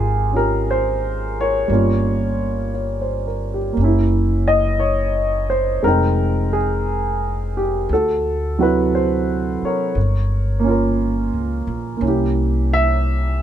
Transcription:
0.00 1.66 G#1 medium
0.00 1.68 G#3 soft
0.00 1.70 D#4 soft
0.00 0.34 F4 medium
0.00 0.36 G4 medium
0.00 1.71 G#4 medium
0.32 1.69 C#4 soft
0.32 1.70 F4 soft
0.32 1.71 G4 soft
0.37 0.69 A#4 medium
0.71 1.41 C5 medium
1.41 3.26 A#4 soft
1.41 2.71 C#5 medium
1.68 3.72 G1 medium
1.68 3.75 G3 soft
1.68 3.72 A#3 soft
1.68 3.77 C#4 soft
1.73 3.78 F4 medium
2.74 3.22 C#5 soft
3.01 3.45 C5 soft
3.27 3.58 A#4 soft
3.54 3.88 G4 soft
3.73 5.79 F#1 medium
3.73 5.82 A#3 soft
3.81 5.85 C#4 soft
3.81 5.87 E4 medium
4.48 4.81 D#5 medium
4.80 5.46 C#5 medium
5.50 5.81 C5 medium
5.83 7.86 F1 medium
5.83 7.90 G#3 medium
5.83 7.90 C4 soft
5.83 7.91 D#4 soft
5.83 6.56 A#4 medium
5.87 7.92 G5 medium
6.53 7.60 G#4 medium
7.57 7.91 G4 medium
7.89 9.59 D2 medium
7.89 8.64 A4 medium
7.94 8.59 F#4 soft
8.59 9.96 C3 soft
8.59 9.95 F#3 medium
8.59 9.96 E4 soft
8.59 9.96 F#4 medium
8.59 8.95 B4 medium
8.95 9.66 C5 medium
9.62 10.69 A#4 soft
9.62 10.96 C#5 medium
9.62 muted upright bass stroke soft
9.95 11.29 G1 medium
10.60 11.95 A#3 medium
10.64 11.99 C#4 medium
10.64 12.03 F4 medium
10.71 12.04 A#4 medium
11.33 11.65 C#2 medium
11.67 12.00 A#1 medium
11.97 13.42 C2 medium
11.97 13.42 A#3 soft
11.97 13.42 C#4 soft
12.04 13.42 E4 soft
12.04 13.42 G4 soft
12.73 13.42 E5 loud

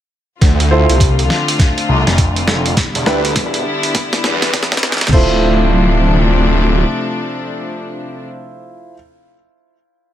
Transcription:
0.41 0.86 D2 medium
0.41 2.75 D3 medium
0.41 2.75 A3 medium
0.41 2.75 C4 medium
0.41 2.75 F4 medium
0.41 kick medium
0.41 snare soft
0.41 closed hi-hat medium
0.60 closed hi-hat soft
0.71 0.90 E4 medium
0.71 0.90 F4 medium
0.71 0.90 A4 medium
0.71 0.90 C5 medium
0.89 1.28 C2 medium
0.89 closed hi-hat soft
1.00 kick loud
1.00 closed hi-hat medium
1.19 closed hi-hat soft
1.30 snare medium
1.48 closed hi-hat medium
1.59 kick medium
1.59 snare medium
1.59 closed hi-hat medium
1.78 closed hi-hat soft
1.89 2.04 C2 medium
2.07 2.75 F1 medium
2.07 snare medium
2.07 closed hi-hat medium
2.18 kick medium
2.18 closed hi-hat medium
2.36 closed hi-hat soft
2.48 snare medium
2.66 closed hi-hat medium
2.77 5.10 D3 medium
2.77 5.10 G3 medium
2.77 5.10 B3 medium
2.77 5.10 E4 medium
2.77 kick medium
2.77 snare medium
2.77 closed hi-hat medium
2.95 3.05 E1 loud
2.95 closed hi-hat soft
3.06 3.34 D2 loud
3.06 3.19 D4 medium
3.06 3.19 E4 medium
3.06 3.19 G4 medium
3.06 3.19 B4 loud
3.06 snare medium
3.25 closed hi-hat medium
3.36 3.63 E1 loud
3.36 kick loud
3.36 snare medium
3.36 closed hi-hat medium
3.54 closed hi-hat soft
3.83 closed hi-hat medium
3.95 kick medium
3.95 snare medium
3.95 closed hi-hat medium
4.13 snare medium
4.13 closed hi-hat soft
4.24 5.11 E2 loud
4.24 snare medium
4.42 snare medium
4.42 closed hi-hat medium
4.53 kick loud
4.53 snare loud
4.53 closed hi-hat medium
4.63 snare loud
4.72 snare medium
4.72 closed hi-hat soft
4.77 snare medium
4.83 snare loud
4.92 snare medium
4.97 snare medium
5.01 snare medium
5.01 closed hi-hat medium
5.04 snare soft
5.07 snare loud
5.10 6.85 D1 loud
5.10 8.24 C3 medium
5.10 8.24 F3 medium
5.10 8.24 D4 medium
5.10 8.94 E4 medium
5.10 8.94 F4 medium
5.10 8.94 A4 medium
5.10 8.94 C5 medium
5.10 kick loud
5.10 snare soft
5.13 8.24 A3 medium
5.13 snare soft
5.13 crash medium
5.18 snare soft

